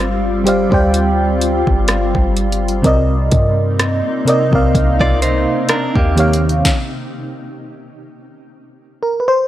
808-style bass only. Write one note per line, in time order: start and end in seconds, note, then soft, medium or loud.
0.00 0.68 G1 loud
0.72 1.63 D2 loud
1.67 2.13 G1 loud
2.15 2.82 G1 loud
2.84 3.30 C2 loud
3.32 4.02 G2 loud
4.53 4.74 C2 loud
4.75 4.99 C2 loud
5.00 5.46 C2 medium
5.96 6.62 D#2 medium